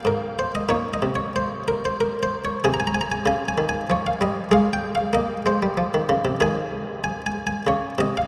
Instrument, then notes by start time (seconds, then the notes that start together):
harpsichord
0.05 G#2 A#4
0.39 C5
0.55 D#5
0.69 A#2 D#4 C#5
0.94 D#5
1.02 C3
1.16 C#5
1.36 C5
1.68 A#4
1.85 C5
2.01 A#4
2.23 C5
2.45 C#5
2.64 C3 G#4 G#5
2.74 A#5
2.80 G#5
2.87 A#5
2.95 G#5
3.01 A#5
3.12 G#5
3.26 C#3 G#5
3.48 G#5
3.58 D#3
3.69 G#5
3.90 F3 C#5
4.07 F5
4.21 G3 D#5
4.51 G#3 G#4 F5
4.73 G5
4.95 F5
5.13 A#3 D#5
5.46 G#3 C5
5.63 G3
5.77 F3
5.94 D#3
6.09 C#3
6.25 C3
6.40 D#3 G#4 G#5
7.04 G#5
7.26 G#5
7.47 G#5
7.67 C#3 C#5
7.98 C3 D#5
8.17 F5